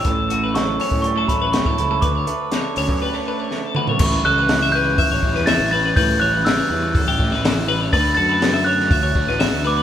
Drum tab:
CC |----------------|----------------|x---------------|----------------|
HH |x-x-x-o-x-x-x-x-|x-x-x-o---------|----o---o---o---|o---o---o---o---|
SD |----o-------o---|----o-------o---|----o------oo---|----o------oo---|
T2 |----------------|--------------o-|----------------|----------------|
FT |----------------|---------------o|----------------|----------------|
BD |o------o--o--o--|o------o--------|o-------o-o-----|o-------o-o-----|

CC |----------------|
HH |o---o---o---o---|
SD |----o--o---oo---|
T2 |----------------|
FT |----------------|
BD |o-------o-o-----|